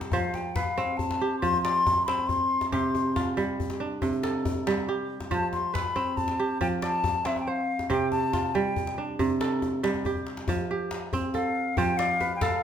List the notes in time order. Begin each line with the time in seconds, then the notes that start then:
Already playing: C3 G3 D4 G4 A4
0.01 djembe slap, djembe tone
0.12 F3 C5 F5, djembe slap, djembe bass
0.34 G5, djembe tone
0.55 B4 F5, djembe slap, djembe bass
0.77 C4, djembe tone
0.97 A5, djembe bass
1.11 djembe slap, djembe tone
1.21 G4
1.40 F3 C6, djembe bass
1.53 djembe tone
1.63 D5 C6, djembe slap
1.87 djembe tone, djembe bass
2.06 C4 B5, djembe slap
2.18 djembe tone
2.28 C6, djembe slap, djembe bass
2.61 djembe slap, djembe tone
2.72 C3 G4 C6, djembe slap, djembe bass
2.95 djembe tone
3.16 F4, djembe slap, djembe bass
3.37 G3, djembe tone
3.60 djembe bass
3.70 djembe slap, djembe tone
3.80 D4
4.02 C3, djembe bass
4.13 djembe tone
4.23 A4, djembe slap
4.45 djembe tone, djembe bass
4.67 G3, djembe slap
4.77 djembe tone
4.88 G4, djembe slap
5.20 djembe slap, djembe tone
5.31 F3 C5 A5, djembe slap, djembe bass
5.52 C6, djembe tone
5.74 B4 B5, djembe slap, djembe bass
5.96 C4, djembe tone
6.17 A5, djembe bass
6.28 djembe slap, djembe tone
6.39 G4
6.61 F3 G5, djembe bass
6.82 D5 A5, djembe slap
7.04 djembe tone, djembe bass
7.25 C4 E5, djembe slap
7.36 G5, djembe tone
7.47 C5 F5, djembe slap
7.79 djembe slap, djembe tone
7.90 C3 G4 G5, djembe slap, djembe bass
8.11 A5, djembe tone
8.33 F4, djembe slap, djembe bass
8.55 G3 G5, djembe tone
8.76 djembe bass
8.87 djembe slap, djembe tone
8.98 D4
9.19 C3, djembe bass
9.30 djembe tone
9.41 A4, djembe slap
9.62 djembe slap, djembe tone
9.83 G3, djembe slap
9.94 djembe tone
10.05 G4, djembe slap, djembe bass
10.16 djembe bass
10.26 djembe slap
10.37 djembe slap
10.48 F3, djembe tone, djembe bass
10.71 G4
10.91 djembe slap
11.13 C4, djembe bass
11.33 A4 F5, djembe tone
11.77 F3 C5 G5, djembe tone, djembe bass
11.97 D5 F5, djembe slap
12.21 B4, djembe tone
12.31 djembe slap
12.36 G5
12.41 A4 F5, djembe slap, djembe bass